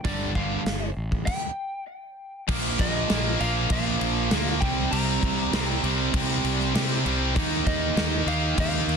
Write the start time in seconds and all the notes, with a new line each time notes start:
0.05 G1 G2 D3 G3 D5, kick, open hi-hat
0.35 G2 D3 G3 F5, kick
0.66 G1, snare, open hi-hat
0.97 A1
1.12 kick
1.26 G5, kick, crash
2.48 A#1 A#2 F3 A#3, kick, crash
2.79 A#1 D#5, kick, crash
3.10 A#1 A#2 F3 A#3, snare, crash
3.40 A#1 A#2 F3 A#3 F5, crash
3.70 A#1 A#2 F3 A#3 F5, kick, crash
4.01 A#1, crash
4.31 D2 A#2 F3 A#3, snare, crash
4.47 snare
4.61 C2 C3 G3 C4 G5, kick, crash
4.91 C2 C3 G3 C4 A#5, crash
5.23 C2, kick, crash
5.53 C2 C3 G3 C4, snare, crash
5.83 C2 C3 G3 C4, crash
6.13 C2 C3 G3 C4, kick, crash
6.44 C2, crash
6.60 snare
6.75 C3 G3 C4, snare, crash
7.05 C2 C3 G3 C4, crash
7.35 D#2 D#3 A#3 D#4, kick, crash
7.66 D#2 D#5, kick, crash
7.96 D#2 D#3 A#3 D#4, snare, crash
8.26 D#2 D#3 A#3 D#4 F5, crash
8.57 D#2 D#3 A#3 D#4 F5, kick, crash
8.87 D#2, crash